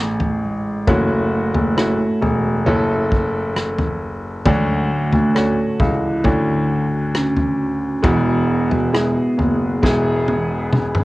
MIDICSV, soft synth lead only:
0, 0, Header, 1, 2, 480
1, 0, Start_track
1, 0, Tempo, 895522
1, 470, Time_signature, 4, 2, 24, 8
1, 5917, End_track
2, 0, Start_track
2, 0, Title_t, "Soft synth lead"
2, 0, Program_c, 0, 80
2, 0, Note_on_c, 0, 57, 84
2, 233, Note_off_c, 0, 57, 0
2, 240, Note_on_c, 0, 56, 78
2, 476, Note_on_c, 0, 57, 87
2, 484, Note_off_c, 0, 56, 0
2, 2153, Note_off_c, 0, 57, 0
2, 2396, Note_on_c, 0, 56, 82
2, 2637, Note_on_c, 0, 57, 85
2, 2645, Note_off_c, 0, 56, 0
2, 3121, Note_on_c, 0, 64, 103
2, 3129, Note_off_c, 0, 57, 0
2, 3596, Note_off_c, 0, 64, 0
2, 3840, Note_on_c, 0, 61, 106
2, 4294, Note_off_c, 0, 61, 0
2, 4319, Note_on_c, 0, 59, 107
2, 5917, Note_off_c, 0, 59, 0
2, 5917, End_track
0, 0, End_of_file